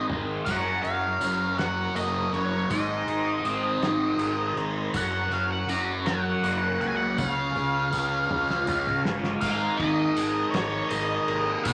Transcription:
0.00 0.43 G#3 medium
0.00 0.45 C4 medium
0.00 0.43 D#4 medium
0.00 0.45 C5 medium
0.00 0.42 D#5 medium
0.08 0.39 G#1 medium
0.08 0.45 G#2 medium
0.08 0.45 D#3 medium
0.08 0.44 G#3 medium
0.08 mid tom medium
0.45 0.79 F#1 medium
0.45 2.33 F#2 medium
0.45 2.69 F#3 medium
0.45 2.69 A#3 medium
0.45 2.69 C#4 medium
0.45 2.69 A#4 medium
0.45 2.69 C#5 medium
0.45 0.82 F#5 medium
0.45 kick medium
0.45 crash loud
0.45 tambourine medium
0.83 1.17 F#1 medium
0.83 1.54 F5 loud
0.83 closed hi-hat medium
0.83 tambourine soft
1.21 1.86 F#1 medium
1.21 2.70 C#4 medium
1.21 closed hi-hat soft
1.21 tambourine medium
1.58 2.32 F#3 medium
1.58 1.97 F#5 medium
1.58 snare loud
1.58 closed hi-hat medium
1.96 2.28 F#1 medium
1.96 2.70 A#3 medium
1.96 2.34 D#5 medium
1.96 closed hi-hat medium
1.96 tambourine medium
2.33 2.65 F#1 medium
2.33 2.70 F#3 medium
2.33 2.71 C#5 medium
2.33 closed hi-hat medium
2.70 3.03 G#1 medium
2.70 4.57 G#2 medium
2.70 4.93 G#3 medium
2.70 4.92 C4 medium
2.70 4.92 D#4 medium
2.70 4.92 C5 medium
2.70 4.92 D#5 medium
2.70 4.53 D#5 medium
2.70 kick medium
2.70 closed hi-hat medium
2.70 tambourine medium
3.07 3.40 G#1 medium
3.07 closed hi-hat medium
3.07 tambourine soft
3.45 3.77 G#1 medium
3.45 4.94 C4 medium
3.45 closed hi-hat medium
3.45 tambourine medium
3.81 4.14 G#1 medium
3.81 4.56 D#3 medium
3.81 snare loud
3.81 closed hi-hat medium
4.18 4.51 G#1 medium
4.18 4.94 G#3 medium
4.18 closed hi-hat medium
4.18 tambourine medium
4.56 4.89 G#1 medium
4.56 4.94 D#3 medium
4.56 closed hi-hat medium
4.93 5.27 F#1 medium
4.93 6.81 F#2 medium
4.93 7.15 A#3 medium
4.93 9.37 C#4 medium
4.93 7.16 F#4 medium
4.93 7.15 C#5 medium
4.93 7.15 F#5 medium
4.93 5.33 F#5 medium
4.93 kick loud
4.93 closed hi-hat medium
4.93 tambourine medium
5.30 5.63 F#1 medium
5.30 5.51 F5 medium
5.30 closed hi-hat medium
5.30 tambourine soft
5.51 5.70 F#5 medium
5.68 6.32 F#1 medium
5.68 7.18 C#4 medium
5.68 5.80 A#5 medium
5.68 closed hi-hat medium
5.68 tambourine medium
6.06 6.79 F#3 medium
6.06 6.80 F#5 medium
6.06 snare loud
6.06 closed hi-hat medium
6.43 6.75 F#1 medium
6.43 7.18 A#3 medium
6.43 closed hi-hat medium
6.43 tambourine medium
6.80 7.13 C#2 medium
6.80 7.18 F#3 medium
6.80 6.87 F#5 medium
6.80 closed hi-hat medium
6.88 6.95 G#5 medium
6.97 7.18 F#5 medium
7.17 7.50 C#2 medium
7.17 9.04 C#3 medium
7.17 9.40 G#3 medium
7.17 9.39 F4 medium
7.17 9.40 C#5 medium
7.17 9.40 F5 medium
7.17 9.01 F5 medium
7.17 kick loud
7.17 high tom soft
7.17 tambourine medium
7.55 7.87 C#2 medium
7.55 high tom medium
7.55 tambourine soft
7.92 8.25 C#2 medium
7.92 9.42 F4 medium
7.92 kick medium
7.92 tambourine medium
8.29 8.62 C#2 medium
8.29 9.03 G#3 medium
8.29 mid tom medium
8.48 snare medium
8.48 tambourine soft
8.66 8.99 C#2 medium
8.66 9.42 C#4 medium
8.66 mid tom medium
8.66 tambourine medium
8.86 floor tom medium
8.86 tambourine soft
9.04 9.36 G1 medium
9.04 9.42 G#3 medium
9.04 snare loud
9.24 snare medium
9.41 9.69 G#1 medium
9.41 11.29 G#2 medium
9.41 11.64 G#3 medium
9.41 11.64 A#3 medium
9.41 11.63 D#4 medium
9.41 11.64 A#4 medium
9.41 11.64 D#5 medium
9.41 9.80 F5 medium
9.41 kick loud
9.41 crash loud
9.41 tambourine loud
9.60 tambourine soft
9.77 10.06 D#2 medium
9.77 10.53 D#3 medium
9.77 10.50 D#5 medium
9.77 kick medium
9.77 ride medium
10.16 10.43 G#1 medium
10.16 10.90 G#3 medium
10.16 ride medium
10.16 tambourine loud
10.50 10.81 G#1 medium
10.50 11.66 D#3 medium
10.50 10.89 C#5 medium
10.50 ride medium
10.50 tambourine soft
10.54 snare loud
10.89 11.18 G#1 medium
10.89 11.66 G#3 medium
10.89 11.67 D#5 medium
10.89 ride medium
10.89 tambourine medium
11.28 11.55 G#1 medium
11.28 11.66 A#3 medium
11.28 ride medium
11.63 11.73 B1 medium
11.63 11.73 B2 medium
11.63 11.73 F#3 medium
11.63 11.73 B3 medium
11.63 11.73 C#4 medium
11.63 11.73 B4 medium
11.63 11.73 C#5 medium
11.63 11.73 F#5 medium
11.63 kick loud
11.63 ride medium
11.63 tambourine loud

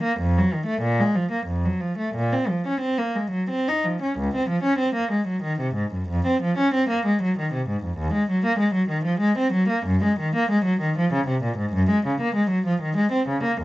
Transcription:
0.03 0.19 A#3 medium
0.20 0.35 F2 medium
0.38 0.53 F#3 medium
0.53 0.68 D#3 medium
0.66 0.83 A3 medium
0.82 0.98 A#2 medium
1.00 1.16 G#3 medium
1.15 1.31 F3 medium
1.32 1.48 A#3 medium
1.47 1.64 F2 medium
1.65 1.82 F#3 medium
1.80 1.98 F3 medium
1.98 2.16 A3 medium
2.15 2.33 A#2 medium
2.33 2.51 C4 medium
2.49 2.67 F3 soft
2.68 2.85 C#4 medium
2.81 2.99 C4 medium
2.98 3.17 A#3 medium
3.15 3.34 G#3 medium
3.31 3.49 F#3 medium
3.50 3.67 C4 medium
3.68 3.85 D#4 medium
3.84 4.02 F3 soft
4.02 4.18 C#4 soft
4.19 4.34 C#2 medium
4.36 4.51 C4 medium
4.49 4.65 F3 medium
4.63 4.80 C#4 medium
4.79 4.96 C4 medium
4.95 5.12 A#3 medium
5.11 5.28 G#3 medium
5.27 5.44 F#3 medium
5.43 5.60 D#3 medium
5.60 5.77 C3 medium
5.75 5.92 G#2 medium
5.92 6.09 F#2 medium
6.08 6.25 F2 medium
6.26 6.42 C4 medium
6.42 6.58 F3 medium
6.58 6.74 C#4 medium
6.74 6.90 C4 medium
6.89 7.05 A#3 medium
7.06 7.21 G#3 medium
7.22 7.37 F#3 medium
7.38 7.53 D#3 medium
7.53 7.68 C3 medium
7.69 7.84 G#2 medium
7.84 7.99 F2 medium
7.98 8.14 D#2 medium
8.13 8.29 G#3 medium
8.31 8.45 F#3 medium
8.46 8.61 A#3 medium
8.59 8.75 G#3 medium
8.74 8.90 F#3 medium
8.89 9.05 D#3 medium
9.05 9.21 F3 medium
9.20 9.36 G#3 medium
9.38 9.54 C4 medium
9.53 9.69 F#3 medium
9.69 9.85 A#3 medium
9.86 10.02 F#2 medium
10.04 10.18 G#3 medium
10.19 10.34 D#3 medium
10.35 10.50 A#3 medium
10.51 10.65 G#3 medium
10.65 10.80 F#3 medium
10.81 10.96 D#3 medium
10.98 11.12 F3 medium
11.13 11.27 C#3 medium
11.27 11.42 C3 medium
11.43 11.57 A#2 medium
11.58 11.72 G#2 medium
11.73 11.88 F#2 medium
11.90 12.04 G#3 medium
12.06 12.20 C#3 medium
12.21 12.35 A#3 medium
12.35 12.49 G#3 medium
12.50 12.65 F#3 medium
12.66 12.81 F3 medium
12.81 12.96 D#3 medium
12.97 13.11 G#3 medium
13.12 13.27 C4 medium
13.28 13.43 C#3 medium
13.43 13.59 A#3 medium
13.61 13.64 D#2 medium

